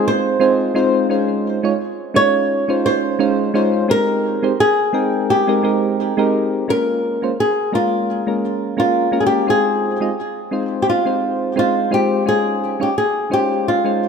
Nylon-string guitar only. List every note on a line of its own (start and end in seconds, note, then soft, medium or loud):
0.08 0.73 C5 medium
2.16 2.82 C#5 loud
2.86 3.51 C5 loud
3.91 4.56 A#4 loud
4.60 5.26 G#4 loud
5.30 5.95 G4 medium
6.70 7.40 A#4 loud
7.40 7.75 G#4 medium
7.75 8.78 F4 medium
8.80 9.20 F4 medium
9.20 9.25 G#4 medium
9.26 9.49 G4 medium
9.50 10.82 G#4 medium
10.82 10.88 G4 medium
10.90 11.54 F4 medium
11.59 11.93 F4 medium
11.94 12.28 G4 medium
12.29 12.82 G#4 medium
12.83 12.96 G4 medium
12.98 13.30 G#4 medium
13.33 13.65 G4 medium
13.68 14.08 F4 medium